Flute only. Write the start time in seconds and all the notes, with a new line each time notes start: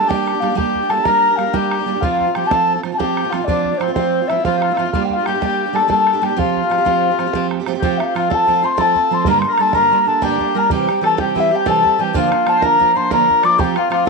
0.08 G5
0.39 F5
0.56 G5
0.89 A5
1.03 A#5
1.36 F5
1.53 G5
2.00 F5
2.33 G5
2.46 A5
2.93 A5
2.97 G5
3.30 F5
3.44 D5
3.77 C5
3.93 C5
4.27 E5
4.43 F5
4.90 F5
5.04 G5
5.12 F5
5.25 G5
5.74 A5
5.90 A5
6.22 G5
6.38 F5
7.85 G5
7.97 E5
8.03 F5
8.17 F5
8.33 A5
8.65 C6
8.80 A5
9.13 C6
9.29 A#5
9.38 C6
9.52 A#5
9.61 A5
9.74 A#5
10.07 A5
10.23 G5
10.58 A#5
10.73 G5
11.05 A5
11.21 G5
11.39 E5
11.55 G5
11.70 A5
12.01 G5
12.17 F5
12.48 A5
12.65 A#5
12.96 C6
13.12 A#5
13.44 D6
13.59 G5
13.78 F5
13.92 F5
14.06 A5